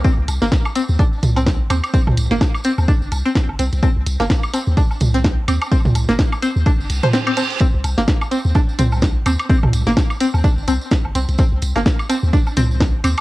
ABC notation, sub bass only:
X:1
M:4/4
L:1/16
Q:"Swing 16ths" 1/4=127
K:Cm
V:1 name="Sub bass" clef=bass
z C,, C,, G,,, z3 E,, z2 C,,3 G,,, E,, z | z C,, C,, G,,, z3 E,, z G,,, C,, z2 G,,, C,, C,, | z C,, C,, G,,, z3 E,, z2 C,,3 G,,, E,, z | z C,, C,, G,,, z3 E,, z G,,, C,, z4 z |
z C,, C,, G,,, z3 E,, z2 C,,3 G,,, E,, z | z C,, C,, G,,, z3 E,, z G,,, C,, z2 G,,, C,, C,, | z C,, C,, G,,, z3 E,, z2 C,,3 G,,, E,, z |]